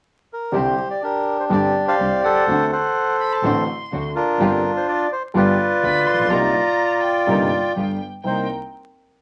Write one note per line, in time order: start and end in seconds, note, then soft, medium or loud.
0.33 0.56 A#4 medium
0.52 0.73 C2 medium
0.52 0.74 C2 medium
0.52 0.73 C3 medium
0.52 0.73 D3 soft
0.52 0.73 G3 soft
0.52 0.73 C4 soft
0.52 0.73 C4 medium
0.52 0.74 D4 soft
0.52 0.74 G4 medium
0.52 1.01 G4 soft
0.52 0.88 C5 medium
0.90 1.03 D5 medium
1.02 1.95 D4 soft
1.02 1.51 G4 soft
1.02 1.37 A#4 medium
1.40 1.45 C5 medium
1.50 1.71 G1 medium
1.50 1.71 G2 medium
1.50 1.71 D3 medium
1.50 1.71 G3 soft
1.50 1.71 C4 soft
1.50 1.71 C4 medium
1.50 1.71 D4 soft
1.50 1.71 G4 medium
1.50 2.44 G4 medium
1.50 1.85 D5 medium
1.87 2.23 C5 soft
1.87 2.44 D5 medium
1.87 2.21 F5 medium
1.98 2.19 C2 soft
1.98 2.20 C2 soft
1.98 2.20 C3 soft
1.98 2.19 C4 soft
1.98 2.19 D4 soft
1.98 2.19 G4 soft
2.24 2.71 A4 medium
2.24 2.71 C5 medium
2.24 2.71 F#5 medium
2.47 2.68 D2 medium
2.47 2.68 D3 medium
2.47 2.68 A3 soft
2.47 2.68 C4 medium
2.47 2.69 C4 medium
2.47 2.68 D4 medium
2.47 2.68 F#4 medium
2.47 2.69 F#4 medium
2.72 3.64 A4 soft
2.72 3.64 C5 soft
2.72 3.17 F#5 medium
3.21 3.35 B5 medium
3.33 3.47 A5 medium
3.43 3.63 A1 medium
3.43 3.64 A1 medium
3.43 3.64 A2 medium
3.43 3.64 D3 medium
3.43 3.64 A3 medium
3.43 3.64 C4 medium
3.43 3.64 D4 medium
3.43 3.64 F#4 medium
3.43 4.05 C6 medium
3.91 4.12 D2 soft
3.91 4.12 D3 soft
3.91 4.12 C4 soft
3.91 4.12 D4 soft
3.91 4.12 F#4 soft
4.15 5.07 D4 medium
4.15 5.07 F4 medium
4.15 4.71 A#4 medium
4.39 4.59 G1 medium
4.39 4.60 G1 medium
4.39 4.60 G2 medium
4.39 4.60 D3 medium
4.39 4.60 G3 medium
4.39 4.59 C4 medium
4.39 4.60 C4 medium
4.39 4.60 F4 medium
4.39 4.60 G4 medium
4.77 4.87 C5 medium
4.89 5.10 D5 medium
5.12 5.23 C5 medium
5.34 5.55 G1 medium
5.34 5.55 G2 medium
5.34 5.55 D3 medium
5.34 5.55 G3 medium
5.34 5.55 B3 medium
5.34 5.55 F4 medium
5.34 7.73 F4 medium
5.34 5.55 G4 medium
5.34 6.28 B4 medium
5.34 7.72 D5 medium
5.83 6.03 D2 soft
5.83 6.03 D3 soft
5.83 6.03 B3 soft
5.83 6.03 F4 soft
5.83 6.03 G4 soft
5.83 6.08 B5 medium
6.07 6.30 A#1 soft
6.07 6.32 C6 medium
6.13 6.19 A1 soft
6.19 6.25 A#1 soft
6.25 6.31 B1 medium
6.30 6.51 C2 medium
6.30 6.51 C3 medium
6.30 6.51 G3 soft
6.30 6.51 A#3 soft
6.30 6.51 C4 medium
6.30 6.51 D#4 medium
6.30 6.51 A#4 medium
6.30 7.03 A#5 medium
7.01 7.99 G5 medium
7.27 7.48 G1 medium
7.27 7.48 G2 medium
7.27 7.47 C3 medium
7.27 7.48 G3 soft
7.27 7.48 A#3 medium
7.27 7.47 C4 medium
7.27 7.47 D#4 medium
7.27 7.48 D#4 medium
7.27 7.48 A#4 medium
7.76 7.96 G1 soft
7.76 7.96 G2 soft
7.76 7.97 B3 soft
7.76 7.97 F4 soft
7.76 7.97 G4 soft
8.23 8.45 C2 soft
8.23 8.44 A#3 soft
8.23 8.44 C4 soft
8.23 8.45 C4 soft
8.23 8.44 D#4 soft
8.23 8.45 D#4 soft
8.23 8.45 A#4 soft
8.23 8.48 C5 medium
8.23 8.46 G5 medium